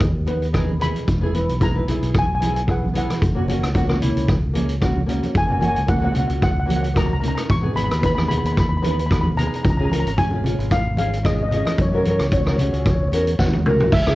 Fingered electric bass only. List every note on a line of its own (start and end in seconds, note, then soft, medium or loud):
0.00 0.91 D#2 medium
1.08 1.47 E1 medium
1.49 1.99 B1 medium
2.03 3.05 B1 medium
3.22 3.61 F#1 medium
3.63 4.14 C#2 medium
4.16 5.19 C#2 medium
5.35 5.74 F#1 medium
5.77 6.27 C#2 medium
6.30 7.33 C#2 medium
7.50 7.89 G#1 medium
7.91 8.42 D#2 medium
8.44 9.47 D#2 medium
9.65 10.04 C#2 medium
10.05 10.56 G#1 medium
10.59 11.62 G#1 medium
11.79 12.18 F#2 medium
12.19 12.70 C#2 medium
12.73 13.10 C#2 medium
13.12 13.36 E2 medium
13.39 13.63 D#2 medium
13.66 13.90 C#2 medium
13.93 14.15 C#2 medium